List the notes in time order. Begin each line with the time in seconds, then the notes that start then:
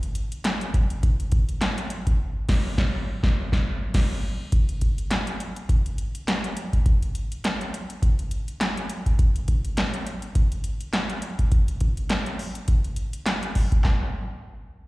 0.03 closed hi-hat
0.15 closed hi-hat
0.32 closed hi-hat
0.44 snare, clap, closed hi-hat
0.61 closed hi-hat
0.74 kick, closed hi-hat
0.90 closed hi-hat
1.03 kick, closed hi-hat
1.20 closed hi-hat
1.32 kick, closed hi-hat
1.49 closed hi-hat
1.61 snare, clap, closed hi-hat
1.78 closed hi-hat
1.90 closed hi-hat
2.07 kick, closed hi-hat
2.49 kick, snare, crash
2.78 kick, snare
3.23 kick, snare
3.52 kick, snare
3.94 kick, snare, crash
4.52 kick, closed hi-hat
4.69 closed hi-hat
4.81 kick, closed hi-hat
4.98 closed hi-hat
5.11 snare, clap, closed hi-hat
5.27 closed hi-hat
5.40 closed hi-hat
5.56 closed hi-hat
5.69 kick, closed hi-hat
5.86 closed hi-hat
5.98 closed hi-hat
6.15 closed hi-hat
6.28 snare, clap, closed hi-hat
6.44 closed hi-hat
6.57 closed hi-hat
6.73 kick, closed hi-hat
6.86 kick, closed hi-hat
7.03 closed hi-hat
7.15 closed hi-hat
7.32 closed hi-hat
7.44 snare, clap, closed hi-hat
7.61 closed hi-hat
7.74 closed hi-hat
7.90 closed hi-hat
8.02 kick, closed hi-hat
8.19 closed hi-hat
8.31 closed hi-hat
8.48 closed hi-hat
8.61 snare, clap, closed hi-hat
8.77 closed hi-hat
8.90 closed hi-hat
9.06 kick, closed hi-hat
9.19 kick, closed hi-hat
9.36 closed hi-hat
9.48 kick, closed hi-hat
9.65 closed hi-hat
9.77 snare, clap, closed hi-hat
9.94 closed hi-hat
10.07 closed hi-hat
10.22 closed hi-hat
10.35 kick, closed hi-hat
10.52 closed hi-hat
10.64 closed hi-hat
10.81 closed hi-hat
10.93 snare, clap, closed hi-hat
11.10 closed hi-hat
11.22 closed hi-hat
11.39 kick, closed hi-hat
11.52 kick, closed hi-hat
11.68 closed hi-hat
11.80 kick, closed hi-hat
11.97 closed hi-hat
12.10 snare, clap, closed hi-hat
12.26 closed hi-hat
12.39 open hi-hat
12.55 closed hi-hat
12.68 kick, closed hi-hat
12.84 closed hi-hat
12.96 closed hi-hat
13.13 closed hi-hat
13.26 snare, clap, closed hi-hat
13.43 closed hi-hat
13.55 kick, open hi-hat
13.72 kick, closed hi-hat
13.84 kick, snare, clap